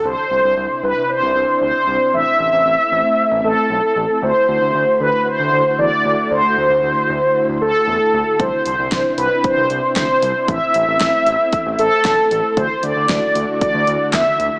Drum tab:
HH |--------|--------|--------|--------|
CP |--------|--------|--------|--------|
SD |--------|--------|--------|--------|
BD |--------|--------|--------|--------|

HH |xxxxxxxx|xxxxxxxx|xxxxxxxx|
CP |--------|--------|------x-|
SD |--o---o-|--o---o-|--o---o-|
BD |o-o-o-o-|o-o-o-o-|o-o-o-o-|